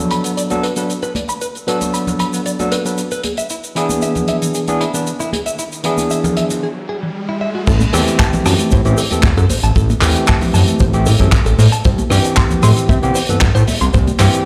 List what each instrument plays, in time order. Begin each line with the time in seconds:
Already playing: tine electric piano F#3 B3 D4 A4
0.11 clean electric guitar B5, closed hi-hat
0.24 clean electric guitar B3, closed hi-hat, shaker
0.37 clean electric guitar D5, closed hi-hat, shaker
0.50 tine electric piano F#3 B3 D4 A4, closed hi-hat, high conga, shaker
0.63 clean electric guitar B4, closed hi-hat
0.76 tine electric piano F#3 B3 D4 B4, clean electric guitar A4, closed hi-hat, shaker
0.90 closed hi-hat, shaker
1.02 clean electric guitar B4, closed hi-hat, high bongo, shaker
1.15 clean electric guitar D5, closed hi-hat, high conga
1.29 clean electric guitar B5, closed hi-hat, shaker
1.41 clean electric guitar B4, closed hi-hat, shaker
1.55 closed hi-hat, shaker
1.67 tine electric piano F#3 B3 D4 A4, clean electric guitar B4, closed hi-hat
1.81 closed hi-hat, high conga, shaker
1.94 clean electric guitar B5, closed hi-hat, shaker
2.07 closed hi-hat, high bongo, low conga, shaker
2.19 clean electric guitar B5, closed hi-hat
2.33 clean electric guitar B3, closed hi-hat, shaker
2.46 clean electric guitar D5, closed hi-hat, shaker
2.59 tine electric piano F#3 B3 D4 A4, closed hi-hat, high conga, shaker
2.72 clean electric guitar B4, closed hi-hat, high bongo
2.85 tine electric piano F#3 B3 D4 B4, clean electric guitar A4, closed hi-hat, shaker
2.98 closed hi-hat, shaker
3.11 clean electric guitar B4, closed hi-hat, shaker
3.24 clean electric guitar G#4, closed hi-hat, high conga
3.37 clean electric guitar E5, closed hi-hat, shaker
3.50 clean electric guitar E4, closed hi-hat, riser, shaker
3.64 closed hi-hat, shaker
3.75 tine electric piano E3 B3 D4 G#4, clean electric guitar E4, closed hi-hat
3.89 closed hi-hat, high conga, shaker
4.02 clean electric guitar E5, closed hi-hat, shaker
4.15 closed hi-hat, low conga, shaker
4.28 clean electric guitar E5, closed hi-hat
4.42 clean electric guitar E3, closed hi-hat, shaker
4.54 clean electric guitar G#4, closed hi-hat, shaker
4.68 tine electric piano E3 B3 D4 G#4, closed hi-hat, high conga, shaker
4.81 clean electric guitar E4, closed hi-hat
4.94 tine electric piano E3 B3 D4 B4, clean electric guitar D4, closed hi-hat, shaker
5.07 closed hi-hat, shaker
5.19 clean electric guitar E4, closed hi-hat, high bongo, shaker
5.33 clean electric guitar G#4, closed hi-hat, high conga
5.46 clean electric guitar E5, closed hi-hat, shaker
5.59 clean electric guitar E4, closed hi-hat, shaker
5.72 closed hi-hat, shaker
5.84 tine electric piano E3 B3 D4 G#4, clean electric guitar E4, closed hi-hat
5.98 closed hi-hat, high conga, shaker
6.10 clean electric guitar E5, closed hi-hat, shaker
6.24 closed hi-hat, high bongo, low conga, shaker
6.37 clean electric guitar E5, closed hi-hat
6.50 clean electric guitar E3, closed hi-hat, shaker
6.63 clean electric guitar G#4
6.89 clean electric guitar G#4
7.03 clean electric guitar E3
7.29 clean electric guitar E4
7.41 clean electric guitar E5
7.55 clean electric guitar F#4
7.67 analog synth bass A1, clean electric guitar A4, kick, closed hi-hat, crash, shaker
7.80 closed hi-hat, high conga, shaker
7.93 analog synth bass E2, tine electric piano E3 A3 C4 G4, clean electric guitar A4, cross-stick, open hi-hat, shaker
8.07 closed hi-hat, shaker
8.20 clean electric guitar A5, kick, clap, closed hi-hat, shaker
8.33 closed hi-hat, high conga, low conga, shaker
8.46 analog synth bass F#2, clean electric guitar A5, cross-stick, open hi-hat, shaker
8.59 clean electric guitar A3, closed hi-hat, shaker
8.71 analog synth bass A2, clean electric guitar C5, kick, closed hi-hat, high conga, shaker
8.85 analog synth bass A1, tine electric piano E3 A3 C4 G4, closed hi-hat, shaker
8.98 clean electric guitar A4, open hi-hat, shaker
9.10 analog synth bass E2, tine electric piano E3 A3 C4 A4, clean electric guitar G4, closed hi-hat, high conga, shaker
9.23 analog synth bass E2, kick, clap, closed hi-hat, shaker
9.37 analog synth bass F#2, clean electric guitar A4, closed hi-hat, high bongo, shaker
9.50 analog synth bass A1, clean electric guitar C5, open hi-hat, high conga, shaker
9.63 analog synth bass A1, clean electric guitar A5, closed hi-hat, shaker
9.76 analog synth bass A1, clean electric guitar A4, kick, closed hi-hat, shaker
9.89 closed hi-hat, high conga, shaker
10.01 analog synth bass E2, tine electric piano E3 A3 C4 G4, clean electric guitar A4, cross-stick, clap, open hi-hat, shaker
10.16 closed hi-hat, shaker
10.27 clean electric guitar A5, kick, clap, closed hi-hat, shaker
10.41 open hi-hat, high bongo, high conga, low conga, shaker
10.54 analog synth bass F#2, clean electric guitar A5, open hi-hat, shaker
10.67 clean electric guitar A3, closed hi-hat, shaker
10.79 analog synth bass A1, clean electric guitar C5, kick, closed hi-hat, high conga, shaker
10.93 tine electric piano E3 A3 C4 G4, closed hi-hat, shaker
11.06 analog synth bass A2, clean electric guitar A4, open hi-hat, high bongo, shaker
11.19 analog synth bass F#2, tine electric piano E3 A3 C4 A4, clean electric guitar G4, kick, closed hi-hat, high conga, shaker
11.32 kick, clap, closed hi-hat, shaker
11.46 analog synth bass A1, clean electric guitar A4, closed hi-hat, shaker
11.59 analog synth bass A2, clean electric guitar C5, open hi-hat, high conga, shaker
11.72 clean electric guitar A5, closed hi-hat, shaker
11.85 analog synth bass C2, clean electric guitar C5, kick, closed hi-hat, shaker
11.98 closed hi-hat, high conga, shaker
12.10 analog synth bass G2, tine electric piano E3 C4 G4, clean electric guitar C5, cross-stick, open hi-hat, shaker
12.24 closed hi-hat, shaker
12.36 clean electric guitar C6, kick, clap, closed hi-hat, shaker
12.51 closed hi-hat, high conga, low conga, shaker
12.63 analog synth bass A2, clean electric guitar C6, cross-stick, open hi-hat, shaker
12.77 clean electric guitar C4, closed hi-hat, shaker
12.89 analog synth bass C3, clean electric guitar E5, kick, closed hi-hat, high conga, shaker
13.02 analog synth bass C2, tine electric piano E3 B3 C4 G4, closed hi-hat, shaker
13.15 clean electric guitar C5, open hi-hat, shaker
13.29 analog synth bass G2, tine electric piano E3 B3 C4 A4, clean electric guitar B4, closed hi-hat, high conga, shaker
13.41 analog synth bass G2, kick, clap, closed hi-hat, shaker
13.55 analog synth bass A2, clean electric guitar C5, closed hi-hat, high bongo, shaker
13.67 analog synth bass C2, clean electric guitar E5, open hi-hat, high conga, shaker
13.81 analog synth bass C2, clean electric guitar C6, closed hi-hat, shaker
13.94 analog synth bass C2, clean electric guitar C5, kick, closed hi-hat, shaker
14.07 closed hi-hat, high conga, shaker
14.19 analog synth bass G2, tine electric piano E3 C4 G4, clean electric guitar C5, cross-stick, clap, open hi-hat, shaker
14.33 closed hi-hat, shaker